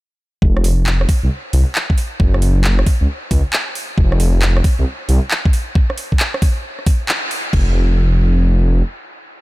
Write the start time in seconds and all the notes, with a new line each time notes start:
0.42 F1, kick
0.57 cross-stick
0.64 open hi-hat
0.87 clap
1.01 cross-stick
1.09 kick, open hi-hat
1.23 C2
1.53 C2, open hi-hat
1.75 clap
1.90 kick
1.98 open hi-hat
2.20 F#1, kick
2.34 cross-stick
2.42 open hi-hat
2.64 clap
2.79 cross-stick
2.87 kick, open hi-hat
3.01 C#2
3.31 C#2, kick, open hi-hat
3.53 clap
3.75 open hi-hat
3.98 F1, kick
4.12 cross-stick
4.20 open hi-hat
4.42 clap
4.57 cross-stick
4.64 kick, open hi-hat
4.79 C2
5.09 C2, open hi-hat
5.31 clap
5.45 kick
5.53 open hi-hat
5.75 kick
5.90 cross-stick
5.98 open hi-hat
6.12 kick
6.20 clap
6.34 cross-stick
6.42 kick, open hi-hat
6.79 cross-stick
6.86 kick, open hi-hat
7.09 clap
7.31 open hi-hat
7.53 F1, kick, crash